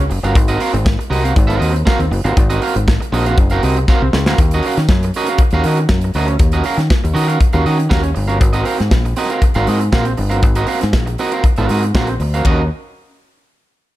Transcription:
0.00 muted clean electric guitar stroke
0.09 F#1, muted clean electric guitar stroke, open hi-hat
0.23 G1 C#4 F#4 A#4 F5, closed hi-hat
0.35 G#1, muted clean electric guitar stroke, kick, closed hi-hat
0.48 C4 F#4 A#4 D#5, closed hi-hat
0.60 C4 F#4 A#4 F5, open hi-hat
0.73 G#1, muted clean electric guitar stroke, closed hi-hat
0.85 muted clean electric guitar stroke, kick, snare
0.99 muted clean electric guitar stroke, closed hi-hat
1.10 C2 C4 F#4 A#4 D#5, open hi-hat
1.24 C4 F#4 A#4 F5, closed hi-hat
1.35 G#1, muted clean electric guitar stroke, kick, closed hi-hat
1.47 C4 F#4 A#4 F5, closed hi-hat
1.59 D#2 C4 F#4 A#4 D#5, open hi-hat
1.74 muted clean electric guitar stroke, closed hi-hat
1.85 C4 F#4 A#4 F5, kick, snare
1.99 D#2, muted clean electric guitar stroke, closed hi-hat
2.11 F#1, muted clean electric guitar stroke, open hi-hat
2.24 G1 C4 F#4 A#4 F5, closed hi-hat
2.37 G#1, muted clean electric guitar stroke, kick, closed hi-hat
2.50 C4 F#4 A#4 D#5, closed hi-hat
2.62 C4 F#4 A#4 F5, open hi-hat
2.76 G#1, muted clean electric guitar stroke, closed hi-hat
2.88 muted clean electric guitar stroke, kick, snare
3.00 muted clean electric guitar stroke, closed hi-hat
3.12 A#1 C4 F#4 A#4 D#5, open hi-hat
3.26 C4 F#4 A#4 F5, closed hi-hat
3.38 F#1, muted clean electric guitar stroke, kick, closed hi-hat
3.50 C4 F#4 A#4 F5, closed hi-hat
3.63 C2 C4 F#4 A#4 D#5, open hi-hat
3.77 muted clean electric guitar stroke, closed hi-hat
3.88 C4 F#4 A#4 F5, kick, snare
4.02 C2, muted clean electric guitar stroke
4.13 C#2, muted clean electric guitar stroke, snare
4.26 D2 C4 F#4 A#4 F5, snare
4.38 D#2, muted clean electric guitar stroke, kick, closed hi-hat
4.51 C#4 F#4 A#4 D#5, closed hi-hat
4.62 C#4 F#4 A#4, open hi-hat
4.67 F5
4.77 D#3, muted clean electric guitar stroke, snare, closed hi-hat
4.89 F#2, muted clean electric guitar stroke, kick, snare
5.03 muted clean electric guitar stroke, closed hi-hat
5.14 C#4 F#4 A#4 D#5, open hi-hat
5.26 C#4 F#4 A#4 F5, closed hi-hat
5.38 muted clean electric guitar stroke, kick, closed hi-hat
5.50 D#2 A#4 F5, closed hi-hat
5.55 C#4 F#4
5.64 D#3 C#4 F#4 A#4 D#5, open hi-hat
5.77 muted clean electric guitar stroke, closed hi-hat
5.89 F#2, kick, snare
6.01 muted clean electric guitar stroke, closed hi-hat
6.14 D2 C#4 F#4 A#4 D#5, open hi-hat
6.28 muted clean electric guitar stroke, closed hi-hat
6.39 D#2, muted clean electric guitar stroke, kick, closed hi-hat
6.52 C#4 F#4 A#4 D#5, closed hi-hat
6.64 C#4 F#4 A#4 F5, open hi-hat
6.77 D#3, muted clean electric guitar stroke, snare, closed hi-hat
6.90 muted clean electric guitar stroke, kick, snare
7.04 D#2, muted clean electric guitar stroke, closed hi-hat
7.14 D#3 C#4 F#4 A#4 D#5, open hi-hat
7.28 C#4 F#4 A#4 F5, closed hi-hat
7.40 muted clean electric guitar stroke, kick, closed hi-hat
7.53 D#2 C#4 F#4 A#4 F5, closed hi-hat
7.65 D#3 C#4 F#4 A#4 D#5, open hi-hat
7.79 muted clean electric guitar stroke, closed hi-hat
7.89 D#2 C#4 F#4 A#4 F5, kick, snare
8.03 muted clean electric guitar stroke, closed hi-hat
8.14 G1, muted clean electric guitar stroke, open hi-hat
8.28 C#4 F#4 A#4 F5, closed hi-hat
8.40 G#1, muted clean electric guitar stroke, kick, closed hi-hat
8.53 C4 F#4 A#4 D#5, closed hi-hat
8.65 C4 F#4 A#4 F5, open hi-hat
8.79 G#2, muted clean electric guitar stroke, snare, closed hi-hat
8.91 A#1, muted clean electric guitar stroke, kick, snare
9.05 muted clean electric guitar stroke, closed hi-hat
9.16 C4 F#4 A#4 D#5, open hi-hat
9.30 C4 F#4 A#4 F5, closed hi-hat
9.42 muted clean electric guitar stroke, kick, closed hi-hat
9.54 G#1 C4 F#4 A#4 F5, closed hi-hat
9.67 G#2 C4 F#4 A#4 D#5, open hi-hat
9.80 muted clean electric guitar stroke, closed hi-hat
9.92 A#1 C4 F#4 A#4 F5, kick, snare
10.05 muted clean electric guitar stroke, closed hi-hat
10.17 G1, muted clean electric guitar stroke, open hi-hat
10.30 C4 F#4 A#4 F5, closed hi-hat
10.42 G#1, muted clean electric guitar stroke, kick, closed hi-hat
10.55 C4 F#4 A#4 D#5, closed hi-hat
10.67 C4 F#4 A#4 F5, open hi-hat
10.81 G#2, muted clean electric guitar stroke, snare, closed hi-hat
10.93 A#1, muted clean electric guitar stroke, kick, snare
11.06 muted clean electric guitar stroke, closed hi-hat
11.18 C4 F#4 A#4 D#5, open hi-hat
11.32 C4 F#4 A#4 F5, closed hi-hat
11.44 muted clean electric guitar stroke, kick, closed hi-hat
11.56 G#1 C4 F#4 A#4 F5, closed hi-hat
11.69 G#2 C4 F#4 A#4 D#5, open hi-hat
11.82 muted clean electric guitar stroke, closed hi-hat
11.94 A#1 C4 F#4 A#4 F5, kick, snare
12.07 muted clean electric guitar stroke, closed hi-hat
12.20 D2, muted clean electric guitar stroke, open hi-hat
12.34 C4 F#4 A#4 F5, closed hi-hat
12.45 D#2 C#4 F#4 A#4 D#5, kick, ride bell

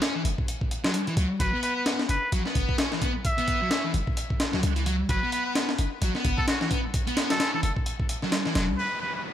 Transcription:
0.02 C#4, snare, closed hi-hat
0.15 E3
0.25 F#1, closed hi-hat
0.38 kick
0.48 closed hi-hat
0.61 kick
0.71 closed hi-hat
0.84 F#3, snare
0.94 closed hi-hat
1.07 E3, closed hi-hat
1.17 C#2 F#3, closed hi-hat
1.40 F#1 F#3 B4, kick, closed hi-hat
1.53 B3
1.63 B4, closed hi-hat
1.77 B4
1.86 snare, closed hi-hat
1.99 snare
2.09 F#1 B4, closed hi-hat
2.32 A1 F#3, closed hi-hat
2.46 B3, snare
2.55 F#1, kick, closed hi-hat
2.69 kick
2.78 C#4, snare, closed hi-hat
2.92 E3, snare
3.02 B3, kick, closed hi-hat
3.25 E5, kick, closed hi-hat
3.38 B3, closed hi-hat
3.48 kick, closed hi-hat
3.61 F#3
3.71 C#4, snare, closed hi-hat
3.84 E3
3.94 F#1, closed hi-hat
4.07 kick
4.17 closed hi-hat
4.30 kick
4.40 snare, closed hi-hat
4.53 C#2 F#3, snare
4.63 C#2, closed hi-hat
4.76 E3, closed hi-hat
4.86 F#3, closed hi-hat
5.09 F#1 F#3 B4, kick, closed hi-hat
5.23 B3
5.32 B4, closed hi-hat
5.46 B4
5.55 snare, closed hi-hat
5.69 snare
5.78 F#1, closed hi-hat
6.02 A1 F#3, closed hi-hat
6.15 B3, snare
6.25 F#1, kick, closed hi-hat
6.38 A4, kick
6.48 C#4 F#4, snare, closed hi-hat
6.61 E3 F#4, snare
6.71 B3, kick, closed hi-hat
6.94 kick, closed hi-hat
7.07 B3, closed hi-hat
7.17 snare, closed hi-hat
7.30 F#3 A4, snare, closed hi-hat
7.40 C#4, snare, closed hi-hat
7.54 E3 A4
7.63 F#1 A4, closed hi-hat
7.76 kick
7.86 closed hi-hat
8.00 kick
8.09 closed hi-hat
8.22 F#3, snare
8.32 snare, closed hi-hat
8.46 E3, snare
8.55 E1 F#3, snare, closed hi-hat
8.69 C#2
8.78 A3 C#4 E4 F#4 B4 C#5, downlifter
9.01 B4
9.15 B4

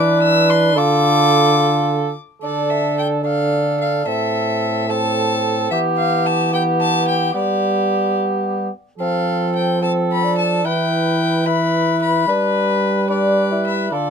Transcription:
Already playing: E3 D4 B4 D6
0.22 E6
0.50 C6
0.75 D3 F4 A4 D6
2.41 D3 D4 A4 D5
2.70 E5
2.99 G5
3.23 D4 A4 F5
3.81 F5
4.05 A2 C4 A4 E5
4.89 C4 A4 A5
5.71 E3 B3 G4 E5
5.97 F5
6.26 A5
6.53 B3 G4 G5
6.81 A5
7.08 G5
7.34 G3 B3 G4 D5
8.98 F3 C4 A4 F5
9.56 G5
9.81 C4 A4 A5
10.12 B5
10.24 D4
10.38 A5
10.64 E3 E4 B4 G5
11.46 E4 B4 B5
12.02 B5
12.27 G3 D4 B4
13.10 D4 B4 D5
13.52 E4
13.67 E5
13.92 D3 F4 A4 D5

